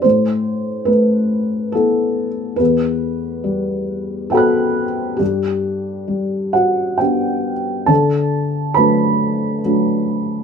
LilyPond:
<<
  \new Staff \with { instrumentName = "Felt piano" } { \time 3/4 \key d \mixolydian \tempo 4 = 69 c''4 b'4 a'4 | b'2 <a' g'' b'' fis'''>4 | g'4. <fis' fis''>8 <g' g''>4 | <a' a''>4 <b' b''>2 | }
  \new Staff \with { instrumentName = "Felt piano" } { \time 3/4 \key d \mixolydian a,4 a4 <b e'>4 | e,4 g4 <b fis'>4 | g,4 g4 <b d'>4 | d4 <fis a d'>4 <fis a d'>4 | }
>>